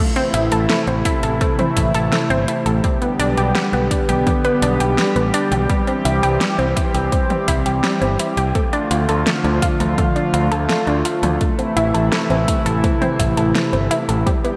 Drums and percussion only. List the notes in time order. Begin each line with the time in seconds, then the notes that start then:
0.16 closed hi-hat
0.34 closed hi-hat
0.52 closed hi-hat
0.70 snare, closed hi-hat
0.87 closed hi-hat
1.05 kick, closed hi-hat
1.23 closed hi-hat
1.41 kick, closed hi-hat
1.59 closed hi-hat, mid tom
1.77 kick, closed hi-hat
1.94 closed hi-hat
2.12 snare, closed hi-hat
2.30 closed hi-hat
2.48 closed hi-hat
2.66 closed hi-hat
2.84 kick, closed hi-hat
3.02 closed hi-hat
3.20 closed hi-hat
3.38 closed hi-hat
3.55 snare, closed hi-hat
3.73 closed hi-hat
3.91 kick, closed hi-hat
4.09 closed hi-hat, mid tom
4.27 kick, closed hi-hat, mid tom
4.45 closed hi-hat
4.62 closed hi-hat
4.80 closed hi-hat
4.98 snare, closed hi-hat
5.16 closed hi-hat
5.34 closed hi-hat
5.52 closed hi-hat, mid tom
5.70 kick, closed hi-hat
5.87 closed hi-hat
6.05 closed hi-hat
6.23 closed hi-hat
6.41 snare, closed hi-hat
6.59 closed hi-hat
6.77 kick, closed hi-hat
6.95 closed hi-hat
7.12 kick, closed hi-hat
7.30 closed hi-hat, mid tom
7.48 kick, closed hi-hat
7.66 closed hi-hat
7.84 snare, closed hi-hat
8.02 closed hi-hat
8.19 closed hi-hat
8.37 closed hi-hat
8.55 kick, closed hi-hat
8.73 closed hi-hat
8.91 closed hi-hat
9.09 closed hi-hat
9.27 snare, closed hi-hat
9.45 closed hi-hat
9.62 kick, closed hi-hat
9.80 closed hi-hat, mid tom
9.98 kick, closed hi-hat, mid tom
10.16 closed hi-hat
10.34 closed hi-hat
10.52 closed hi-hat
10.69 snare, closed hi-hat
10.87 closed hi-hat
11.05 closed hi-hat
11.23 closed hi-hat, mid tom
11.41 kick, closed hi-hat
11.59 closed hi-hat
11.77 closed hi-hat
11.95 closed hi-hat
12.12 snare, closed hi-hat
12.30 closed hi-hat
12.48 kick, closed hi-hat
12.66 closed hi-hat
12.84 kick, closed hi-hat
13.02 closed hi-hat, mid tom
13.20 kick, closed hi-hat
13.37 closed hi-hat
13.55 snare, closed hi-hat
13.73 closed hi-hat
13.91 closed hi-hat
14.09 closed hi-hat
14.27 kick, closed hi-hat
14.45 closed hi-hat